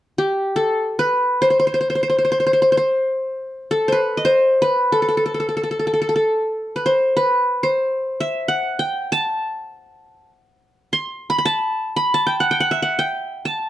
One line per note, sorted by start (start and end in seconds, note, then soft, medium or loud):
0.18 1.44 G4 medium
0.56 1.73 A4 medium
0.99 1.48 B4 medium
1.42 1.50 C5 medium
1.50 1.59 C5 soft
1.60 1.66 C5 medium
1.67 1.74 C5 soft
1.74 1.80 C5 medium
1.81 1.89 C5 soft
1.90 1.95 C5 soft
1.95 2.02 C5 soft
2.03 2.09 C5 soft
2.10 2.18 C5 soft
2.18 2.24 C5 soft
2.25 2.31 C5 soft
2.32 2.40 C5 medium
2.40 2.46 C5 soft
2.47 2.53 C5 soft
2.53 2.61 C5 soft
2.62 2.72 C5 medium
2.72 2.77 C5 soft
2.77 3.82 C5 medium
3.71 4.88 A4 medium
3.88 3.98 C5 soft
3.92 4.31 B4 medium
4.17 5.13 D#5 medium
4.25 4.68 C5 medium
4.62 5.71 B4 medium
4.92 5.02 A4 medium
5.02 5.08 A4 soft
5.09 5.17 A4 soft
5.17 5.25 A4 soft
5.26 5.34 A4 soft
5.34 5.39 A4 soft
5.40 5.48 A4 soft
5.49 5.56 A4 soft
5.57 5.63 A4 soft
5.63 5.71 A4 soft
5.71 5.79 A4 soft
5.79 5.87 A4 soft
5.87 5.93 A4 soft
5.94 6.01 A4 soft
6.02 6.08 A4 soft
6.09 6.15 A4 soft
6.16 7.33 A4 soft
6.76 6.92 B4 soft
6.86 7.23 C5 medium
7.17 7.69 B4 medium
7.63 8.68 C5 medium
8.20 9.12 E5 medium
8.48 8.85 F#5 medium
8.79 9.62 G5 medium
9.12 10.29 A5 medium
10.93 11.36 C6 medium
11.30 11.38 B5 medium
11.38 11.96 B5 medium
11.45 12.14 A5 medium
11.96 12.68 B5 medium
12.14 12.91 A5 medium
12.27 12.46 G5 medium
12.40 12.57 F#5 medium
12.51 12.66 G5 medium
12.60 12.82 F#5 medium
12.71 13.63 E5 medium
12.82 13.05 F#5 medium
12.99 13.69 G5 medium
13.45 13.69 A5 medium